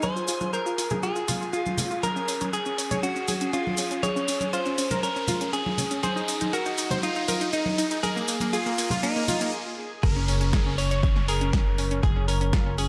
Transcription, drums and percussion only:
0.02 high conga medium
0.02 cabasa medium
0.17 cabasa soft
0.28 open hi-hat loud
0.28 cabasa loud
0.41 high conga medium
0.41 cabasa soft
0.53 cabasa medium
0.66 cabasa soft
0.78 open hi-hat loud
0.78 cabasa medium
0.90 high conga medium
0.90 low conga medium
0.90 cabasa soft
1.03 cabasa medium
1.16 cabasa soft
1.28 open hi-hat loud
1.28 high conga medium
1.28 low conga medium
1.28 cabasa loud
1.42 cabasa soft
1.53 cabasa medium
1.66 high conga medium
1.66 cabasa soft
1.78 open hi-hat loud
1.78 low conga loud
1.78 cabasa medium
1.91 cabasa soft
2.03 closed hi-hat soft
2.03 high conga medium
2.03 cabasa soft
2.16 cabasa soft
2.28 open hi-hat loud
2.28 cabasa medium
2.41 closed hi-hat medium
2.41 high conga medium
2.41 cabasa soft
2.53 closed hi-hat medium
2.53 cabasa soft
2.66 cabasa soft
2.78 open hi-hat loud
2.78 cabasa medium
2.91 closed hi-hat medium
2.91 high conga medium
2.91 low conga medium
2.91 cabasa soft
3.03 closed hi-hat medium
3.03 cabasa medium
3.16 cabasa soft
3.28 open hi-hat loud
3.28 high conga medium
3.28 cabasa medium
3.41 closed hi-hat medium
3.41 cabasa soft
3.53 closed hi-hat soft
3.53 cabasa medium
3.67 high conga medium
3.77 open hi-hat loud
3.77 cabasa medium
3.91 closed hi-hat medium
3.91 cabasa soft
4.03 closed hi-hat medium
4.03 high conga medium
4.03 cabasa soft
4.16 cabasa soft
4.28 open hi-hat loud
4.28 cabasa medium
4.41 closed hi-hat medium
4.41 high conga medium
4.41 cabasa soft
4.53 closed hi-hat medium
4.53 cabasa medium
4.66 cabasa soft
4.78 open hi-hat loud
4.78 cabasa medium
4.91 closed hi-hat medium
4.91 high conga medium
4.91 low conga medium
4.91 cabasa soft
5.03 closed hi-hat medium
5.03 cabasa medium
5.16 cabasa soft
5.28 open hi-hat loud
5.28 high conga medium
5.28 low conga medium
5.28 cabasa medium
5.41 closed hi-hat medium
5.41 cabasa soft
5.53 closed hi-hat medium
5.53 cabasa soft
5.66 high conga loud
5.78 open hi-hat loud
5.78 low conga medium
5.78 cabasa medium
5.91 closed hi-hat medium
5.91 cabasa soft
6.03 closed hi-hat medium
6.03 high conga medium
6.03 cabasa medium
6.17 cabasa soft
6.28 open hi-hat loud
6.28 cabasa medium
6.41 closed hi-hat medium
6.41 high conga medium
6.41 cabasa soft
6.53 closed hi-hat medium
6.53 cabasa medium
6.66 cabasa soft
6.78 open hi-hat loud
6.78 cabasa medium
6.91 closed hi-hat medium
6.91 high conga medium
6.91 low conga medium
6.91 cabasa soft
7.03 closed hi-hat medium
7.03 cabasa medium
7.15 cabasa soft
7.28 open hi-hat loud
7.28 high conga medium
7.28 cabasa medium
7.41 closed hi-hat medium
7.41 cabasa soft
7.53 closed hi-hat medium
7.53 cabasa medium
7.66 high conga loud
7.78 open hi-hat loud
7.78 cabasa medium
7.91 closed hi-hat medium
7.91 cabasa soft
8.03 closed hi-hat medium
8.03 high conga medium
8.03 cabasa soft
8.17 cabasa soft
8.28 open hi-hat loud
8.28 cabasa medium
8.40 closed hi-hat medium
8.40 high conga medium
8.40 cabasa soft
8.53 closed hi-hat medium
8.53 cabasa medium
8.66 cabasa soft
8.78 open hi-hat loud
8.78 cabasa medium
8.90 closed hi-hat medium
8.90 high conga loud
8.90 low conga medium
8.90 cabasa soft
9.03 closed hi-hat medium
9.03 cabasa medium
9.16 cabasa soft
9.28 open hi-hat loud
9.28 high conga medium
9.28 low conga medium
9.28 cabasa medium
9.41 closed hi-hat medium
9.41 cabasa soft
10.03 kick loud
10.03 closed hi-hat medium
10.28 open hi-hat loud
10.41 closed hi-hat medium
10.53 kick loud
10.53 snare loud
10.53 closed hi-hat medium
10.78 open hi-hat loud
10.91 closed hi-hat medium
11.03 kick loud
11.03 closed hi-hat medium
11.16 snare soft
11.28 open hi-hat loud
11.41 closed hi-hat medium
11.53 kick loud
11.53 snare loud
11.53 closed hi-hat medium
11.78 open hi-hat loud
11.91 closed hi-hat medium
12.03 kick loud
12.03 closed hi-hat medium
12.28 open hi-hat loud
12.41 closed hi-hat medium
12.53 kick loud
12.53 snare loud
12.53 closed hi-hat medium
12.78 open hi-hat loud

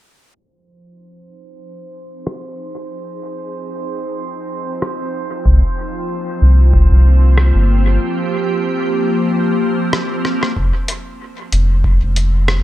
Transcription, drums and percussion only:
2.27 cross-stick medium
4.82 cross-stick medium
5.46 kick loud
6.74 kick loud
7.38 cross-stick medium
9.93 cross-stick medium
10.25 cross-stick medium
10.43 cross-stick medium
10.57 kick medium
10.88 closed hi-hat medium
11.52 closed hi-hat soft
11.84 kick medium
12.16 closed hi-hat soft
12.48 cross-stick medium

